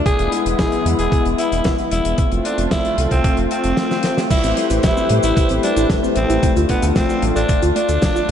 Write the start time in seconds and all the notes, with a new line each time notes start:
0.06 G#3 B3 E4 G#4, kick, closed hi-hat
0.19 E1, closed hi-hat
0.32 closed hi-hat
0.46 E1, closed hi-hat
0.59 G#4, kick, snare, closed hi-hat
0.72 closed hi-hat
0.86 E2, closed hi-hat
0.99 E1 G#4, closed hi-hat
1.12 kick, closed hi-hat
1.25 E1, closed hi-hat
1.38 E4, closed hi-hat
1.52 E1, closed hi-hat
1.64 kick, snare, closed hi-hat
1.78 closed hi-hat
1.91 E1 E4, closed hi-hat
2.05 E1, closed hi-hat
2.18 A3 C4 F4, kick, closed hi-hat
2.32 F1, closed hi-hat
2.45 D4, closed hi-hat
2.58 F1, closed hi-hat
2.71 E4, kick, snare, closed hi-hat
2.85 closed hi-hat
2.98 C2, closed hi-hat
3.11 C2 C4, kick, closed hi-hat
3.24 kick, closed hi-hat
3.37 F1, closed hi-hat
3.51 C4, closed hi-hat
3.64 F1, closed hi-hat
3.77 snare, closed hi-hat
3.91 snare, closed hi-hat
4.03 snare, closed hi-hat
4.18 snare, closed hi-hat
4.31 G3 A3 E4 G4 B4 C5, kick, closed hi-hat, crash, cabasa
4.43 A1 C4, closed hi-hat, cabasa
4.57 G3, closed hi-hat
4.70 A1 E4, closed hi-hat, cabasa
4.83 G3 E4, kick, snare, closed hi-hat, cabasa
4.97 C4, cabasa
5.09 A2 G3, closed hi-hat
5.23 A1 E4, closed hi-hat, cabasa
5.37 G3, kick, closed hi-hat, cabasa
5.49 A1 C4, closed hi-hat, cabasa
5.63 G3 D4, closed hi-hat
5.76 A1 E4, closed hi-hat, cabasa
5.90 G3, kick, snare, closed hi-hat, cabasa
6.03 C4, cabasa
6.16 A1 G3 C4, closed hi-hat
6.30 A1 E4, closed hi-hat, cabasa
6.43 A3 D4 F4, kick, closed hi-hat, cabasa
6.56 D2 F4, closed hi-hat, cabasa
6.69 A3 B3, kick, closed hi-hat
6.82 D2 A4, closed hi-hat, cabasa
6.96 A3 C4, kick, snare, closed hi-hat, cabasa
7.09 F4, cabasa
7.22 A1 A3, closed hi-hat
7.36 A1 D4 A4, closed hi-hat, cabasa
7.49 A3, kick, closed hi-hat, cabasa
7.62 D2 F4, closed hi-hat, cabasa
7.76 A3 D4, closed hi-hat
7.89 D2 A4, closed hi-hat, cabasa
8.02 A3, kick, snare, closed hi-hat, cabasa
8.16 F4, cabasa